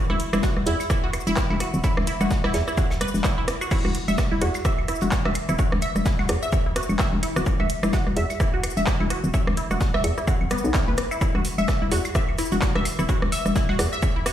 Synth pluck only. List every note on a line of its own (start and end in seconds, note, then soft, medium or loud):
0.10 0.12 E4 loud
0.33 0.39 E4 medium
0.43 0.49 F#4 medium
0.67 0.70 E4 loud
0.90 0.98 E4 medium
1.04 1.08 F#4 medium
1.27 1.29 E4 loud
1.50 1.57 E4 medium
1.60 1.66 F#4 medium
1.84 1.87 E4 loud
2.07 2.16 E4 medium
2.21 2.25 F#4 medium
2.44 2.47 E4 loud
2.68 2.74 E4 medium
2.78 2.83 F#4 medium
3.01 3.09 B4 medium
3.24 3.30 E4 medium
3.38 3.44 E4 medium
3.61 3.67 F#4 medium
3.71 3.80 E4 medium
3.85 3.89 F#4 medium
4.08 4.12 E5 loud
4.31 4.38 E4 medium
4.41 4.47 F#4 medium
4.65 4.71 E5 loud
4.88 4.97 E4 medium
5.02 5.06 F#4 medium
5.25 5.29 E5 loud
5.49 5.55 E4 medium
5.59 5.64 F#4 medium
5.82 5.88 E5 loud
6.06 6.14 E4 medium
6.19 6.23 F#4 medium
6.43 6.47 E5 loud
6.66 6.72 E4 medium
6.76 6.82 F#4 medium
6.99 7.05 E5 loud
7.23 7.31 E4 medium
7.36 7.41 F#4 medium
7.60 7.64 E5 loud
7.83 7.89 E4 medium
7.93 7.99 F#4 medium
8.17 8.22 E5 loud
8.40 8.49 E4 medium
8.54 8.58 F#4 medium
8.77 8.81 E5 loud
9.00 9.07 E4 medium
9.10 9.16 F#4 medium
9.34 9.39 E5 loud
9.57 9.66 E4 medium
9.71 9.75 F#4 medium
9.94 9.98 E5 loud
10.18 10.24 E4 medium
10.28 10.33 F#4 medium
10.51 10.59 B3 loud
10.74 10.83 E4 medium
10.88 10.94 B4 medium
11.11 11.14 E4 medium
11.21 11.30 E4 medium
11.35 11.39 F#4 medium
11.58 11.62 E5 loud
11.82 11.88 E4 medium
11.92 11.97 F#4 medium
12.15 12.21 E5 loud
12.39 12.47 E4 medium
12.52 12.56 F#4 medium
12.75 12.80 E5 loud
12.99 13.05 E4 medium
13.09 13.14 F#4 medium
13.32 13.38 E5 loud
13.56 13.64 E4 medium
13.69 13.73 F#4 medium
13.93 13.97 E5 loud
14.16 14.22 E4 medium
14.26 14.32 F#4 medium